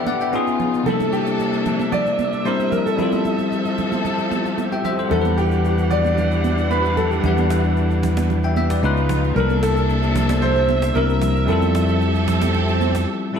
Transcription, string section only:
0.00 0.30 E3 medium
0.00 0.30 D4 medium
0.00 0.30 G4 medium
0.00 0.30 F#5 medium
0.33 0.86 C#3 medium
0.33 0.86 B3 medium
0.33 0.86 D#4 medium
0.33 0.86 F4 medium
0.86 2.44 C3 medium
0.86 2.97 A#3 medium
0.86 2.44 D4 medium
0.86 2.44 A4 medium
0.86 5.07 E5 medium
2.45 2.98 C3 medium
2.45 2.98 G3 medium
2.98 5.09 F3 medium
2.98 8.79 G4 medium
2.98 5.09 A4 medium
5.11 8.79 E3 medium
5.11 8.79 D4 medium
5.11 8.79 F#5 medium
8.83 9.35 C#3 medium
8.83 9.35 B3 medium
8.83 9.35 D#4 medium
8.83 9.35 F4 medium
9.36 11.46 C3 medium
9.36 10.94 A#3 medium
9.36 10.94 D4 medium
9.36 10.94 A4 medium
9.36 13.39 E5 medium
10.95 11.48 G3 medium
10.95 11.48 A#3 medium
11.48 13.39 F3 medium
11.48 13.39 G4 medium
11.48 13.39 A4 medium

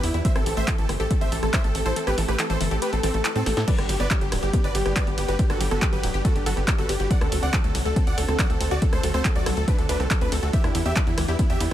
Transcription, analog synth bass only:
0.03 0.11 E2 loud
0.14 0.22 E2 medium
0.36 0.43 A1 medium
0.46 0.54 A1 loud
0.57 0.65 A1 loud
0.78 0.86 A1 medium
0.89 0.97 G1 loud
1.00 1.08 A1 medium
1.21 1.29 A1 medium
1.32 1.40 A1 loud
1.43 1.50 A1 medium
1.64 1.72 A1 medium
1.75 1.83 A1 loud
1.86 1.93 A1 medium
2.07 2.15 A1 medium
2.18 2.26 A1 loud
2.28 2.36 A1 loud
2.50 2.58 A1 medium
2.61 2.68 G1 loud
2.71 2.79 A1 medium
2.93 3.01 A1 medium
3.03 3.11 A1 medium
3.14 3.22 A1 medium
3.36 3.43 A2 medium
3.46 3.54 A1 loud
3.57 3.65 A2 loud
3.78 3.86 G1 medium
3.89 3.97 G1 loud
4.00 4.08 G1 loud
4.21 4.29 G1 medium
4.32 4.40 D1 loud
4.43 4.50 G1 medium
4.64 4.72 G1 medium
4.75 4.83 G1 loud
4.86 4.93 G1 loud
5.07 5.15 G1 medium
5.18 5.26 G1 medium
5.28 5.36 G1 medium
5.50 5.58 G1 medium
5.61 5.68 G1 loud
5.71 5.79 G1 loud
5.93 6.00 G1 medium
6.03 6.11 D1 loud
6.14 6.22 G1 medium
6.36 6.43 G1 medium
6.46 6.54 G1 loud
6.57 6.65 G1 loud
6.78 6.86 G1 medium
6.89 6.97 G1 loud
7.00 7.08 G1 medium
7.21 7.29 D2 medium
7.32 7.40 D2 loud
7.43 7.50 D2 loud
7.64 7.72 D2 medium
7.75 7.83 C2 loud
7.86 7.93 D2 medium
8.07 8.15 D2 medium
8.18 8.25 D2 loud
8.28 8.36 D2 loud
8.50 8.58 D2 medium
8.61 8.68 D2 loud
8.71 8.79 D2 medium
8.93 9.00 D2 medium
9.03 9.11 D2 loud
9.14 9.22 D2 loud
9.36 9.43 D2 medium
9.46 9.54 C2 loud
9.57 9.65 D2 medium
9.78 9.86 D2 medium
9.89 9.97 D2 medium
10.00 10.08 C2 loud
10.21 10.29 D2 medium
10.32 10.40 D2 loud
10.43 10.50 D2 medium
10.64 10.72 E2 medium
10.75 10.83 E2 loud
10.86 10.93 E2 loud
11.07 11.15 E2 medium
11.18 11.25 D2 loud
11.28 11.36 E2 medium
11.50 11.58 E2 medium
11.61 11.68 E2 loud

